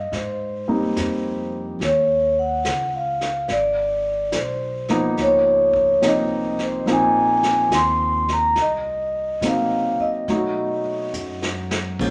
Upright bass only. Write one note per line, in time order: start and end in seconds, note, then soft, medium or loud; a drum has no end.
0.00 0.11 G2 medium
0.12 0.94 G#2 medium
0.96 1.79 F2 medium
1.80 2.62 D#2 medium
2.66 3.47 C#2 medium
3.49 4.31 G#1 medium
4.33 5.15 B1 medium
5.17 5.99 C#2 medium
6.02 6.84 C2 medium
6.86 7.68 A#1 medium
7.70 8.53 D#2 medium
8.56 9.39 C2 medium
9.41 9.95 C3 medium
9.99 muted upright bass stroke soft
10.27 11.11 B2 medium
11.13 11.97 F#2 medium
12.00 12.10 A#1 medium